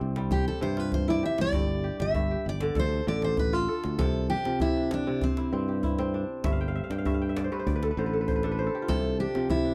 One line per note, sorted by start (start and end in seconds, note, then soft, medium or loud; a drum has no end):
0.00 0.48 C2 medium
0.00 0.60 C3 medium
0.00 1.66 C4 medium
0.00 0.54 D4 medium
0.00 0.51 E4 medium
0.00 0.53 F4 medium
0.00 0.31 G4 medium
0.00 djembe slap soft
0.16 1.59 G3 medium
0.16 djembe slap medium
0.31 1.23 G4 medium
0.31 0.47 G4 medium
0.31 djembe tone medium
0.31 djembe bass medium
0.48 0.62 A4 medium
0.61 1.21 G2 medium
0.61 1.59 C3 medium
0.61 0.80 C5 medium
0.77 2.29 F4 medium
0.77 0.94 B4 medium
0.77 djembe slap medium
0.92 1.10 C5 medium
0.92 djembe slap soft
0.92 djembe bass medium
1.08 2.65 E4 medium
1.08 1.25 D5 medium
1.23 1.83 G4 medium
1.23 1.41 E5 medium
1.23 djembe slap soft
1.38 1.50 C2 medium
1.38 2.01 D5 loud
1.38 djembe slap medium
1.53 1.89 G1 medium
1.53 2.14 G2 medium
1.53 djembe tone medium
1.53 djembe bass medium
1.69 djembe slap soft
1.84 1.99 G4 medium
2.00 2.35 G1 medium
2.00 2.30 G4 medium
2.00 2.48 E5 medium
2.00 djembe slap medium
2.15 2.81 G2 medium
2.15 djembe slap soft
2.15 djembe bass medium
2.31 3.72 G4 medium
2.45 2.70 G1 medium
2.45 2.79 D5 medium
2.45 djembe slap soft
2.61 2.81 D3 medium
2.61 djembe slap medium
2.75 3.00 D2 loud
2.75 3.68 A4 medium
2.75 djembe slap soft
2.75 djembe tone medium
2.75 djembe bass medium
2.79 3.08 C5 medium
3.07 3.67 A1 medium
3.07 4.04 D3 medium
3.07 3.24 D5 medium
3.22 3.39 C5 medium
3.22 djembe slap medium
3.37 3.54 B4 medium
3.37 djembe bass medium
3.53 5.05 F4 medium
3.53 3.98 A4 medium
3.68 5.00 A4 medium
3.84 3.96 D2 medium
3.84 djembe slap medium
3.99 4.35 C2 medium
3.99 4.60 C3 medium
3.99 4.29 A4 medium
3.99 djembe slap medium
3.99 djembe tone medium
3.99 djembe bass medium
4.15 djembe slap soft
4.30 4.76 D4 medium
4.30 4.61 G4 medium
4.45 5.28 C3 medium
4.45 4.65 F3 medium
4.45 djembe slap soft
4.60 5.06 C3 medium
4.60 4.89 E4 medium
4.60 djembe bass medium
4.76 6.14 D4 medium
4.91 5.24 D4 medium
4.91 djembe slap medium
5.07 6.49 C3 medium
5.07 djembe slap soft
5.21 5.80 C4 medium
5.21 djembe tone medium
5.21 djembe bass medium
5.37 5.83 E4 medium
5.37 djembe slap medium
5.52 6.24 G2 medium
5.52 5.99 C4 medium
5.52 djembe slap soft
5.68 7.10 G4 medium
5.68 djembe slap soft
5.83 6.58 E4 medium
5.83 djembe bass medium
5.98 7.58 C4 medium
5.98 djembe slap soft
6.14 7.82 D4 medium
6.14 djembe slap soft
6.44 6.80 G1 medium
6.44 7.05 G2 medium
6.44 6.74 E5 medium
6.44 djembe slap medium
6.44 djembe tone medium
6.44 djembe bass medium
6.52 6.68 F5 medium
6.60 6.91 G5 medium
6.60 djembe slap soft
6.68 6.83 F5 medium
6.75 7.04 E5 medium
6.84 6.98 F5 medium
6.90 7.49 G2 medium
6.90 7.21 G5 medium
6.90 djembe slap medium
6.98 7.14 F5 medium
7.05 7.51 G2 medium
7.05 7.29 E5 medium
7.05 djembe bass medium
7.14 7.35 F5 medium
7.22 8.15 G5 medium
7.29 8.33 E5 medium
7.37 7.67 D5 medium
7.37 djembe slap medium
7.44 7.59 C5 medium
7.52 7.72 G2 medium
7.52 7.75 B4 medium
7.52 djembe slap soft
7.59 7.82 C5 medium
7.67 7.90 D2 loud
7.67 8.78 D5 medium
7.67 djembe tone medium
7.67 djembe bass medium
7.76 7.90 B4 medium
7.83 8.13 A4 medium
7.83 djembe slap soft
7.91 8.06 B4 medium
7.97 8.68 A1 loud
7.97 8.94 D3 medium
7.97 8.27 C5 medium
7.97 djembe slap soft
8.06 8.20 B4 medium
8.13 8.43 A4 medium
8.13 djembe slap soft
8.21 8.35 B4 medium
8.28 8.58 C5 medium
8.28 djembe bass medium
8.36 8.51 B4 medium
8.43 9.19 D4 medium
8.43 8.66 A4 medium
8.43 djembe slap soft
8.52 8.95 B4 medium
8.58 9.74 C5 medium
8.58 djembe slap soft
8.67 9.74 A4 medium
8.75 9.74 G4 medium
8.82 9.74 F4 medium
8.88 9.25 C2 medium
8.88 9.48 C3 medium
8.88 9.20 A4 medium
8.88 djembe slap medium
8.88 djembe tone medium
8.88 djembe bass medium
9.05 djembe slap soft
9.20 9.64 D4 medium
9.20 9.50 G4 medium
9.35 9.74 C3 medium
9.35 9.55 F3 medium
9.35 djembe slap soft
9.50 9.74 C3 medium
9.50 9.74 E4 medium
9.50 djembe bass medium
9.65 9.74 D4 medium